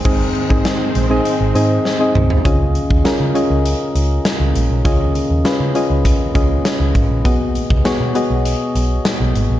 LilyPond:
<<
  \new Staff \with { instrumentName = "Synth keys" } { \time 4/4 \key aes \mixolydian \tempo 4 = 100 << { <c' ees' aes' ees''>8. <c' ees' aes' ees''>4 <c' ees' aes' ees''>8. <c' ees' aes' ees''>8. <c' ees' aes' ees''>8. | \key des \mixolydian <des' f' aes' ees''>4 <des' f' aes' bes'>8 <des' f' aes' ees''>4.~ <des' f' aes' ees''>16 r8. | <des' f' aes' ees''>4 <des' f' aes' ces''>8 <des' f' aes' ees''>4 <des' f' aes' ees''>4~ <des' f' aes' ees''>16 r16 | <ces' ges' aes' ees''>4 <ces' ges' aes' des''>8 <ces' ges' aes' ees''>4.~ <ces' ges' aes' ees''>16 r8. | } \\ { aes,4. r2 r8 | des4. r2 r8 | des4. r2 r8 | ces4. r2 r8 | } >> }
  \new Staff \with { instrumentName = "String machine" } { \clef bass \time 4/4 \key aes \mixolydian <ees aes c'>1 | \key des \mixolydian r1 | r1 | r1 | }
  \new Staff \with { instrumentName = "Picked electric bass" } { \clef bass \time 4/4 \key aes \mixolydian aes,,8 r16 aes,,16 r8 bes,,8 r16 aes,,16 aes,8 r8 c,8 | \key des \mixolydian des,8. ees,16 r16 des16 r16 des,8 r16 des,8 r16 des,16 bes,,16 ces,16 | des,8. ees,16 r16 des16 r16 des,8 r16 des,8 r16 des,16 aes,,16 bes,,16 | r8. des,16 r16 ces16 r16 ces,8 r16 ces,8 r16 ces,16 aes,,16 bes,,16 | }
  \new DrumStaff \with { instrumentName = "Drums" } \drummode { \time 4/4 <cymc bd>8 hh16 bd16 <hh sn>8 hh8 hh8 hh8 sn8 toml16 tomfh16 | <hh bd>8 hh16 bd16 <hh sn>8 hh8 hh8 hh8 <hh sn>8 hh8 | <hh bd>8 hh8 <hh sn>8 hh8 <hh bd>8 <hh bd>8 <hh sn>8 <hh bd>8 | <hh bd>8 hh16 bd16 <hh sn>8 hh8 hh8 hh8 <hh sn>8 hh8 | }
>>